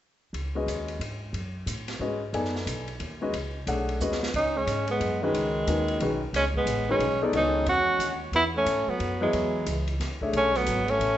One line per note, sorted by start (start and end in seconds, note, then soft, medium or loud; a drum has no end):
0.33 0.66 C#2 medium
0.33 ride soft
0.55 0.98 G#3 soft
0.55 0.98 C#4 soft
0.55 0.99 F#4 soft
0.55 0.99 B4 soft
0.55 0.99 D#5 soft
0.66 0.99 D#2 medium
0.66 hi-hat pedal soft
0.66 ride soft
0.88 ride soft
1.00 1.32 G#2 medium
1.00 ride soft
1.33 1.66 F#2 medium
1.33 ride soft
1.66 1.99 A2 medium
1.66 hi-hat pedal soft
1.66 ride soft
1.88 snare soft
1.88 ride soft
2.00 2.32 G#2 medium
2.00 2.19 G#3 soft
2.00 2.19 C#4 soft
2.00 2.20 F#4 soft
2.00 2.20 B4 soft
2.00 2.20 D#5 medium
2.33 2.65 F#2 medium
2.33 2.84 B3 soft
2.33 2.84 D#4 soft
2.33 2.84 A4 soft
2.33 2.84 D5 soft
2.33 2.84 G#5 soft
2.33 ride soft
2.45 snare soft
2.56 snare soft
2.66 2.99 B1 medium
2.66 hi-hat pedal soft
2.66 ride soft
2.88 ride soft
3.00 3.33 D#2 medium
3.00 ride soft
3.21 3.33 G#3 soft
3.21 3.33 C#4 soft
3.21 3.33 F#4 soft
3.21 3.33 B4 soft
3.21 3.33 D#5 medium
3.33 3.66 C#2 medium
3.33 ride soft
3.67 3.99 B1 medium
3.67 4.00 A3 medium
3.67 4.00 D4 soft
3.67 4.00 G#4 soft
3.67 4.00 C#5 soft
3.67 4.00 F#5 medium
3.67 hi-hat pedal soft
3.67 ride soft
3.89 ride soft
4.00 4.33 D#2 medium
4.00 4.20 G#3 soft
4.00 4.20 C#4 soft
4.00 4.20 F#4 soft
4.00 4.20 B4 soft
4.00 4.20 D#5 medium
4.00 hi-hat pedal soft
4.12 snare soft
4.23 snare medium
4.34 4.66 C#2 medium
4.34 4.58 C#4 medium
4.34 4.59 D#4 medium
4.34 kick soft
4.34 ride soft
4.57 4.89 G#3 medium
4.57 4.89 C#4 medium
4.67 4.99 G#2 medium
4.67 hi-hat pedal soft
4.67 ride soft
4.88 5.24 G#3 medium
4.88 5.25 B3 medium
4.88 ride soft
5.00 5.32 F#2 medium
5.00 ride soft
5.22 5.65 D#3 medium
5.22 6.22 D#3 medium
5.22 5.66 G#3 soft
5.22 6.23 G#3 medium
5.22 5.66 C#4 soft
5.22 5.66 F#4 soft
5.22 5.66 B4 medium
5.33 5.66 C#2 medium
5.33 ride soft
5.67 6.00 D#2 medium
5.67 6.00 D#3 soft
5.67 6.00 G#3 soft
5.67 6.00 C#4 soft
5.67 6.00 F#4 soft
5.67 6.00 B4 soft
5.67 hi-hat pedal soft
5.67 ride soft
5.88 ride soft
6.00 6.32 B1 medium
6.00 6.20 D#3 soft
6.00 6.20 G#3 soft
6.00 6.20 C#4 soft
6.00 6.20 F#4 soft
6.00 6.20 B4 medium
6.00 ride soft
6.33 6.65 C#2 medium
6.33 6.45 G#3 medium
6.33 6.45 C#4 medium
6.33 snare soft
6.33 ride soft
6.55 6.87 G#3 medium
6.55 6.87 B3 medium
6.55 kick soft
6.66 6.99 A1 medium
6.66 hi-hat pedal soft
6.66 ride soft
6.89 7.00 D#3 medium
6.89 7.00 G#3 medium
6.89 7.20 G#3 medium
6.89 7.00 C#4 medium
6.89 7.21 C#4 medium
6.89 7.00 F#4 medium
6.89 7.01 B4 medium
6.99 7.32 B1 medium
6.99 ride soft
7.22 7.65 B3 medium
7.22 7.65 D#4 medium
7.22 7.65 G#4 medium
7.22 7.66 A4 medium
7.22 7.66 D5 medium
7.33 7.65 C#2 medium
7.33 8.27 D#3 soft
7.33 8.27 G#3 soft
7.33 8.27 C#4 soft
7.33 7.66 C#4 medium
7.33 7.66 D#4 medium
7.33 8.27 F#4 soft
7.33 8.27 B4 medium
7.33 ride soft
7.66 7.98 E2 medium
7.66 8.18 C#4 medium
7.66 8.19 F#4 medium
7.66 ride soft
7.99 8.31 D#2 medium
7.99 hi-hat pedal soft
7.99 ride soft
8.32 8.65 E2 medium
8.32 8.44 B3 medium
8.32 8.45 E4 medium
8.32 ride soft
8.56 8.90 A3 medium
8.56 8.91 C#4 medium
8.66 8.86 G#2 medium
8.66 hi-hat pedal soft
8.66 ride soft
8.87 9.22 F#3 medium
8.87 9.22 B3 medium
8.87 muted upright bass stroke soft
9.00 9.33 F#2 medium
9.00 ride soft
9.21 9.89 E3 medium
9.21 9.65 F#3 medium
9.21 9.89 G#3 medium
9.21 9.65 B3 medium
9.21 9.65 E4 medium
9.21 9.65 B4 medium
9.21 9.65 C#5 medium
9.33 9.66 E2 medium
9.33 ride soft
9.66 9.99 C#2 medium
9.66 hi-hat pedal soft
9.66 ride medium
9.87 ride soft
10.00 10.32 D2 medium
10.00 snare soft
10.00 ride soft
10.21 10.65 A3 medium
10.21 10.65 D4 soft
10.21 10.66 G#4 soft
10.21 10.66 C#5 soft
10.21 10.66 E5 medium
10.21 kick soft
10.33 10.66 B1 medium
10.33 10.57 A3 medium
10.33 ride soft
10.37 10.58 C#4 medium
10.54 10.90 F#3 medium
10.54 10.92 B3 medium
10.54 snare soft
10.66 10.99 G#1 medium
10.66 hi-hat pedal soft
10.66 ride soft
10.88 11.18 A3 medium
10.88 11.18 C#4 medium
10.88 ride soft
11.00 11.18 A1 medium
11.00 ride soft